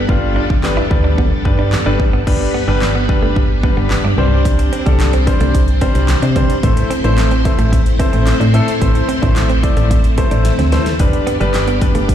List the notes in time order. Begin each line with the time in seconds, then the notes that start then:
Already playing: G3 B3 D4
0.09 G1 G3 B3 D4 F4 A4, kick
0.36 D4
0.50 G1, muted clean electric guitar stroke, kick
0.63 G3 D4 B4, snare, clap
0.77 E4
0.90 D2 G3 D4 B4, muted clean electric guitar stroke, kick
1.04 D4
1.18 B3, kick
1.32 muted clean electric guitar stroke
1.45 G2 G3 D4 B4, kick
1.59 D4
1.72 snare, clap
1.86 G1 G3 D4 B4
2.00 muted clean electric guitar stroke, kick
2.13 B3
2.27 G1 G3 B3 D4 B4, kick, crash
2.41 muted clean electric guitar stroke
2.54 B3
2.68 G1 G3 D4 B4
2.82 snare, clap
2.95 B3
3.09 G3 D4 B4, muted clean electric guitar stroke, kick
3.22 G1 A3
3.36 muted clean electric guitar stroke, kick
3.63 G3 B3 D4 B4, kick
3.77 G1 B3
3.90 muted clean electric guitar stroke, snare, clap
4.04 G2 D4
4.18 C2 G3 C4 D4 C5
4.45 kick, closed hi-hat
4.59 muted clean electric guitar stroke, closed hi-hat
4.73 C4, closed hi-hat
4.86 C2 G3 D4 A4, kick, closed hi-hat
5.00 snare, clap, closed hi-hat
5.13 C4, closed hi-hat
5.27 G3 D4 C5, muted clean electric guitar stroke, kick, closed hi-hat
5.40 C2 A3, closed hi-hat
5.54 muted clean electric guitar stroke, kick, closed hi-hat
5.68 closed hi-hat
5.81 G3 C4 D4 C5, kick, closed hi-hat
5.95 C2 C4, closed hi-hat
6.08 muted clean electric guitar stroke, snare, clap, closed hi-hat
6.22 C3 D4, closed hi-hat
6.36 G3 C4 D4 C5, kick, closed hi-hat
6.50 closed hi-hat
6.63 A1 A3 C4 E4 C5, kick, closed hi-hat
6.77 muted clean electric guitar stroke, closed hi-hat
6.90 C4, closed hi-hat
7.04 A1 A3 D4 E4 C5, closed hi-hat
7.18 snare, clap, closed hi-hat
7.31 C4, closed hi-hat
7.45 A3 E4 C5, muted clean electric guitar stroke, kick, closed hi-hat
7.59 A1 A3, closed hi-hat
7.72 muted clean electric guitar stroke, kick, closed hi-hat
7.86 closed hi-hat
7.99 A3 C4 E4 C5, kick, closed hi-hat
8.13 A1 C4, closed hi-hat
8.27 muted clean electric guitar stroke, snare, clap, closed hi-hat
8.40 A2 D4, closed hi-hat
8.54 A3 C4 E4 A4, closed hi-hat
8.68 closed hi-hat
8.81 A1 A3 E4 C5, kick, closed hi-hat
8.95 muted clean electric guitar stroke, closed hi-hat
9.09 C4, closed hi-hat
9.22 A1 A3 D4 E4 C5, kick, closed hi-hat
9.36 snare, clap, closed hi-hat
9.49 C4, closed hi-hat
9.63 A3 E4 D5, muted clean electric guitar stroke, kick, closed hi-hat
9.77 A1 A3, closed hi-hat
9.91 muted clean electric guitar stroke, kick, closed hi-hat
10.04 closed hi-hat
10.18 A3 E4 C5, kick, closed hi-hat
10.31 A1 D4, closed hi-hat
10.45 muted clean electric guitar stroke, snare, closed hi-hat
10.59 D2 C4, snare, closed hi-hat
10.72 A3 C4 E4 C5, snare, closed hi-hat
10.86 snare, closed hi-hat
10.99 G1 G3 B3 D4 G4 B4 D5, kick, closed hi-hat
11.13 muted clean electric guitar stroke, closed hi-hat
11.27 B3, closed hi-hat
11.40 G1 G3 D4 B4, closed hi-hat
11.54 snare, clap, closed hi-hat
11.67 B3, closed hi-hat
11.81 G3 D4 B4, muted clean electric guitar stroke, kick, closed hi-hat
11.95 G1 A3, closed hi-hat
12.09 muted clean electric guitar stroke, kick, closed hi-hat